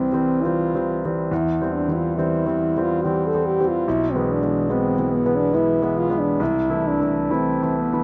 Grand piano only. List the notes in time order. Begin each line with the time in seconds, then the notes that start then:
Already playing: C2 E3 G3 C4
0.12 E3 G3 C4
0.44 E3 G3 C4
0.74 E3 G3 C4
1.05 E3 G3 C4
1.31 E2
1.61 E3 G3 C4
1.88 E3 G3 C4
2.17 E3 G3 C4
2.46 E3 G3 C4
2.77 E3 G3 C4
3.05 E3 G3 C4
3.35 E3 G3 C4
3.60 E3 G3 C4
3.88 B1
4.15 E3 G#3 B3
4.42 E3 G#3 B3
4.69 E3 G#3 B3
4.98 E3 G#3 B3
5.26 E3 G#3 B3
5.53 E3 G#3 B3
5.82 E3 G#3 B3
6.10 E3 G#3 B3
6.40 C2
6.69 E3 A3 E4
7.00 E3 A3 E4
7.30 E3 A3 E4
7.62 E3 A3 E4
7.93 E3 A3 E4